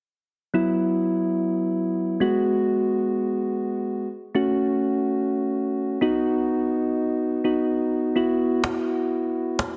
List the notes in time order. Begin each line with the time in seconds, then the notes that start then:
0.54 F#3 B3 E4
2.20 G#3 B3 F#4
4.35 A3 C#4 F#4
6.01 B3 D#4 F#4
7.44 B3 D#4 F#4
8.16 B3 E4 F#4
8.64 cajon slap
9.59 cajon slap